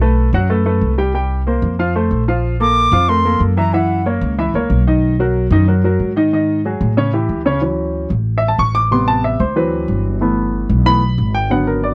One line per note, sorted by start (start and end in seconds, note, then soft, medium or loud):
0.00 0.28 B1 medium
0.00 0.28 A3 medium
0.00 0.28 A4 medium
0.00 0.28 B4 medium
0.33 0.78 F#2 medium
0.33 0.47 F#3 medium
0.33 0.47 F#4 medium
0.33 0.47 F#5 medium
0.50 0.63 A3 medium
0.50 0.63 A4 medium
0.50 0.63 B4 medium
0.66 0.92 A3 medium
0.66 0.93 A4 medium
0.66 0.93 B4 medium
0.81 1.57 C2 medium
0.98 1.11 G3 medium
0.98 1.12 G4 medium
0.98 1.12 G5 medium
1.14 1.41 G3 medium
1.14 1.41 G4 medium
1.14 1.41 G5 medium
1.47 1.73 A#3 medium
1.47 1.73 A#4 medium
1.47 1.74 C5 medium
1.62 2.08 F2 medium
1.79 1.92 F3 medium
1.79 1.93 F4 medium
1.79 1.93 F5 medium
1.96 2.22 A3 medium
1.96 2.22 A4 medium
1.96 2.22 C5 medium
2.11 2.86 A#1 medium
2.28 2.54 F3 medium
2.28 2.55 F4 medium
2.28 2.55 F5 medium
2.60 2.87 A#3 medium
2.60 2.87 A4 medium
2.60 2.87 A#4 medium
2.60 3.10 D6 loud
2.92 3.37 F2 loud
2.92 3.06 F3 medium
2.92 3.06 F4 medium
2.92 3.06 F5 medium
3.08 3.22 A3 medium
3.08 3.22 A4 medium
3.08 3.22 A#4 medium
3.08 3.41 C6 medium
3.25 3.51 A#3 medium
3.25 3.52 A4 medium
3.25 3.52 A#4 medium
3.40 4.16 F#2 medium
3.57 3.70 E3 medium
3.57 3.71 E4 medium
3.57 3.71 E5 medium
3.57 3.75 A#5 medium
3.74 4.00 E3 medium
3.74 4.00 E4 medium
3.74 4.00 E5 medium
3.74 4.06 F#5 medium
4.06 4.32 A#3 medium
4.06 4.33 A#4 medium
4.06 4.33 C#5 medium
4.21 4.52 C#2 medium
4.38 4.52 E3 medium
4.38 4.52 E4 medium
4.38 4.52 E5 medium
4.54 4.69 C#2 medium
4.54 4.81 A#3 medium
4.54 4.81 A#4 medium
4.54 4.81 C#5 medium
4.70 5.45 B1 medium
4.87 5.14 D#3 medium
4.87 5.14 D#4 medium
4.87 5.14 D#5 medium
5.20 5.46 F#3 medium
5.20 5.46 F#4 medium
5.20 5.46 A#4 medium
5.50 5.96 F#2 loud
5.50 5.65 D#3 medium
5.50 5.65 D#4 medium
5.50 5.65 D#5 medium
5.68 5.81 F#3 medium
5.68 5.81 F#4 medium
5.68 5.81 A#4 medium
5.84 6.11 F#3 medium
5.84 6.11 F#4 medium
5.84 6.11 A#4 medium
6.00 6.75 G#2 medium
6.16 6.29 D#3 medium
6.16 6.30 D#4 medium
6.16 6.30 D#5 medium
6.33 6.59 D#3 medium
6.33 6.59 D#4 medium
6.33 6.60 D#5 medium
6.65 6.92 F#3 medium
6.65 6.92 F#4 medium
6.65 6.92 G#4 medium
6.81 7.26 A2 medium
6.97 7.10 C#3 medium
6.97 7.11 C#4 medium
6.97 7.11 C#5 medium
7.13 7.40 E3 medium
7.13 7.40 E4 medium
7.13 7.40 G4 medium
7.29 8.05 D2 medium
7.46 7.59 C#3 medium
7.46 7.59 C#4 medium
7.46 7.59 C#5 medium
7.61 8.08 E3 medium
7.61 8.08 F#3 soft
7.61 8.08 C#4 medium
8.10 8.55 A1 medium
8.38 8.48 E5 medium
8.48 8.59 A5 medium
8.58 9.34 A1 medium
8.58 8.75 C#6 medium
8.75 8.91 D6 loud
8.91 9.37 C3 medium
8.91 9.38 G3 soft
8.91 9.38 B3 medium
8.91 9.07 C6 medium
9.08 9.23 A5 medium
9.24 9.40 E5 medium
9.40 9.85 D2 medium
9.40 9.56 C5 medium
9.56 10.18 E3 medium
9.56 10.18 F#3 medium
9.56 10.18 C4 medium
9.56 10.02 B4 medium
9.88 10.64 G1 medium
10.21 10.84 E3 medium
10.21 10.84 A3 soft
10.21 10.85 B3 medium
10.69 11.15 B1 medium
10.85 11.00 E3 medium
10.85 11.00 A3 soft
10.85 11.01 B3 medium
10.85 11.31 B5 loud
11.18 11.93 G#1 medium
11.35 11.50 G5 medium
11.50 11.94 D3 medium
11.50 11.94 F#3 medium
11.50 11.94 B3 medium
11.50 11.67 F#5 medium
11.67 11.83 A#4 medium
11.84 11.94 D5 medium